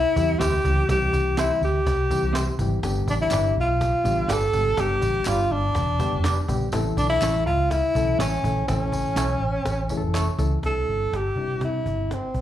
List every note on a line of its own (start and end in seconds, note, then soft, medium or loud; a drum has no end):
0.00 0.41 E4 loud
0.16 0.34 E2 loud
0.16 0.53 E3 medium
0.16 0.53 G3 medium
0.16 0.53 C4 medium
0.16 0.53 E4 medium
0.16 0.54 G4 medium
0.16 cajon bass loud
0.16 tambourine medium
0.40 0.58 D2 medium
0.40 0.52 C4 medium
0.40 0.53 E4 medium
0.40 0.89 G4 loud
0.40 0.53 G4 medium
0.40 0.53 C5 medium
0.40 cajon slap loud
0.40 clap medium
0.40 tambourine medium
0.64 0.82 C#2 loud
0.64 0.83 E3 medium
0.64 0.83 G3 medium
0.64 0.83 C4 medium
0.64 0.83 E4 medium
0.64 0.83 G4 medium
0.64 cajon bass medium
0.64 tambourine soft
0.89 1.06 C2 medium
0.89 1.63 E3 medium
0.89 1.64 G3 medium
0.89 1.64 C4 medium
0.89 1.64 E4 medium
0.89 1.35 G4 loud
0.89 1.64 G4 medium
0.89 cajon bass loud
0.89 cajon slap loud
0.89 tambourine medium
1.13 1.48 C2 medium
1.13 cajon bass loud
1.13 tambourine medium
1.26 cajon slap soft
1.37 1.50 C4 medium
1.37 1.50 E4 medium
1.37 1.61 E4 medium
1.37 1.50 G4 loud
1.37 1.51 C5 loud
1.37 cajon slap loud
1.37 clap medium
1.37 tambourine loud
1.61 1.79 D2 loud
1.61 2.57 G4 medium
1.61 tambourine soft
1.76 cajon slap soft
1.86 2.13 C2 loud
1.86 cajon bass medium
1.86 cajon slap medium
1.86 tambourine soft
2.10 2.47 E3 medium
2.10 2.48 G3 medium
2.10 2.47 C4 medium
2.10 2.48 E4 medium
2.10 2.48 G4 medium
2.10 cajon bass loud
2.10 tambourine medium
2.23 2.49 C2 medium
2.33 2.46 C4 medium
2.33 2.47 E4 loud
2.33 2.47 G4 medium
2.33 2.48 C5 loud
2.33 cajon slap loud
2.33 clap medium
2.33 tambourine medium
2.59 2.77 G#1 medium
2.59 2.78 E3 medium
2.59 2.78 G3 medium
2.59 2.79 C4 medium
2.59 2.78 E4 medium
2.59 2.79 G4 medium
2.59 cajon bass loud
2.59 tambourine medium
2.83 3.01 G1 loud
2.83 3.57 D3 medium
2.83 3.58 G3 medium
2.83 3.57 B3 medium
2.83 3.58 D4 medium
2.83 3.58 G4 medium
2.83 cajon bass loud
2.83 cajon slap loud
2.83 tambourine medium
3.07 3.25 A1 medium
3.07 3.15 D4 medium
3.07 cajon bass loud
3.07 tambourine medium
3.20 3.55 E4 loud
3.20 cajon slap soft
3.31 3.50 G1 loud
3.31 3.44 D4 loud
3.31 3.44 G4 loud
3.31 3.45 B4 loud
3.31 3.45 D5 loud
3.31 cajon slap loud
3.31 clap medium
3.31 tambourine loud
3.57 3.92 B1 medium
3.57 4.33 F4 medium
3.57 cajon slap soft
3.70 cajon slap soft
3.81 cajon bass medium
3.81 cajon slap medium
3.81 tambourine soft
4.04 4.23 A1 medium
4.04 4.41 D3 medium
4.04 4.42 G3 medium
4.04 4.42 B3 medium
4.04 4.42 D4 medium
4.04 4.42 G4 medium
4.04 cajon bass medium
4.04 tambourine medium
4.28 4.47 G1 medium
4.28 4.41 D4 medium
4.28 4.41 G4 medium
4.28 4.81 A4 loud
4.28 4.42 B4 medium
4.28 4.42 D5 loud
4.28 cajon slap loud
4.28 clap medium
4.28 tambourine medium
4.53 4.71 G#1 medium
4.53 4.72 D3 medium
4.53 4.72 G3 medium
4.53 4.72 B3 medium
4.53 4.73 D4 medium
4.53 4.72 G4 medium
4.53 cajon bass medium
4.53 tambourine medium
4.77 4.95 G1 loud
4.77 5.52 D3 medium
4.77 5.52 G3 medium
4.77 5.52 B3 medium
4.77 5.52 D4 medium
4.77 5.52 G4 medium
4.77 5.30 G4 loud
4.77 cajon bass loud
4.77 cajon slap loud
4.77 tambourine medium
5.01 5.19 A1 medium
5.01 cajon bass loud
5.01 tambourine medium
5.13 cajon slap soft
5.25 5.44 G1 loud
5.25 5.39 D4 medium
5.25 5.54 F4 loud
5.25 5.40 G4 medium
5.25 5.40 B4 medium
5.25 5.40 D5 loud
5.25 cajon slap loud
5.25 clap medium
5.25 tambourine medium
5.51 5.69 G1 loud
5.51 6.49 D4 medium
5.51 cajon slap soft
5.75 6.02 E1 loud
5.75 cajon bass medium
5.75 cajon slap medium
5.75 tambourine soft
5.99 6.37 D3 medium
5.99 6.37 G3 medium
5.99 6.37 B3 medium
5.99 6.37 D4 medium
5.99 6.37 G4 medium
5.99 cajon bass loud
5.99 tambourine medium
6.13 6.39 F1 medium
6.24 6.37 D4 medium
6.24 6.37 G4 medium
6.24 6.37 B4 medium
6.24 6.38 D5 loud
6.24 cajon slap loud
6.24 clap medium
6.24 tambourine medium
6.48 6.66 A#1 medium
6.48 6.67 D3 medium
6.48 6.67 G3 medium
6.48 6.67 B3 medium
6.48 6.68 D4 medium
6.48 6.68 G4 loud
6.48 cajon bass loud
6.48 tambourine soft
6.72 6.91 A1 loud
6.72 7.47 E3 medium
6.72 7.46 A3 medium
6.72 6.79 C4 medium
6.72 7.47 E4 medium
6.72 7.47 A4 loud
6.72 cajon bass loud
6.72 cajon slap loud
6.72 tambourine medium
6.79 7.49 C#4 medium
6.97 7.15 B1 medium
6.97 7.09 D4 medium
6.97 cajon bass loud
6.97 tambourine medium
7.10 7.44 E4 loud
7.22 7.46 A1 medium
7.22 7.34 C#4 medium
7.22 7.35 E4 loud
7.22 7.35 A4 medium
7.22 7.35 C#5 loud
7.22 cajon slap loud
7.22 clap medium
7.22 tambourine medium
7.46 7.81 C#2 loud
7.46 7.72 F4 loud
7.71 8.20 E4 loud
7.71 cajon bass medium
7.71 cajon slap medium
7.71 tambourine soft
7.95 8.13 B1 medium
7.95 8.32 E3 medium
7.95 8.32 A3 medium
7.95 8.32 C#4 medium
7.95 8.33 E4 medium
7.95 8.32 A4 medium
7.95 cajon bass medium
7.95 tambourine medium
8.19 8.37 A1 medium
8.19 8.31 C#4 medium
8.19 8.65 C#4 loud
8.19 8.32 E4 medium
8.19 8.32 A4 medium
8.19 8.32 C#5 loud
8.19 cajon slap loud
8.19 clap medium
8.19 tambourine medium
8.44 8.62 A#1 loud
8.44 8.63 E3 medium
8.44 8.62 A3 medium
8.44 8.62 C#4 medium
8.44 8.63 E4 medium
8.44 8.63 A4 medium
8.44 cajon bass loud
8.44 tambourine soft
8.68 9.03 A1 medium
8.68 9.42 E3 medium
8.68 9.42 A3 medium
8.68 9.42 C#4 medium
8.68 10.11 C#4 medium
8.68 9.42 E4 medium
8.68 9.42 A4 medium
8.68 cajon bass loud
8.68 cajon slap loud
8.68 tambourine medium
8.92 cajon bass loud
8.92 tambourine medium
9.05 cajon slap soft
9.16 9.34 B1 loud
9.16 9.29 C#4 medium
9.16 9.29 E4 loud
9.16 9.29 A4 loud
9.16 9.29 C#5 loud
9.16 cajon slap loud
9.16 clap medium
9.16 tambourine loud
9.40 9.58 A1 medium
9.65 9.92 A1 loud
9.65 cajon bass medium
9.65 cajon slap loud
9.65 tambourine soft
9.89 10.27 E3 medium
9.89 10.28 A3 medium
9.89 10.28 C#4 medium
9.89 10.28 E4 medium
9.89 9.97 G#4 medium
9.89 cajon bass medium
9.89 tambourine medium
9.97 10.28 F1 medium
9.97 10.31 A4 loud
10.14 10.27 C#4 medium
10.14 10.27 E4 medium
10.14 10.27 A4 medium
10.14 10.27 C#5 medium
10.14 cajon slap loud
10.14 clap medium
10.14 tambourine medium
10.39 10.56 C#2 loud
10.39 10.57 E3 medium
10.39 10.57 A3 medium
10.39 10.57 C#4 medium
10.39 10.58 E4 medium
10.39 10.57 A4 medium
10.39 cajon bass medium
10.39 tambourine medium
10.63 10.80 C2 medium
10.63 11.19 G3 medium
10.63 11.20 C4 medium
10.63 11.20 D4 medium
10.63 11.20 E4 medium
10.63 11.17 A4 medium
10.63 cajon bass medium
10.63 cajon slap medium
10.88 11.05 G1 medium
11.11 11.29 G1 medium
11.11 cajon slap medium
11.16 11.63 G4 medium
11.36 11.54 C3 medium
11.36 12.11 G3 medium
11.36 12.11 C4 medium
11.36 12.11 D4 medium
11.36 12.11 E4 medium
11.36 cajon slap soft
11.61 11.79 C3 medium
11.61 12.15 E4 medium
11.61 cajon bass medium
11.61 cajon slap medium
11.86 12.12 G1 medium
11.86 cajon bass medium
12.11 12.41 C4 medium
12.11 cajon slap medium
12.34 12.41 B1 medium
12.34 cajon bass medium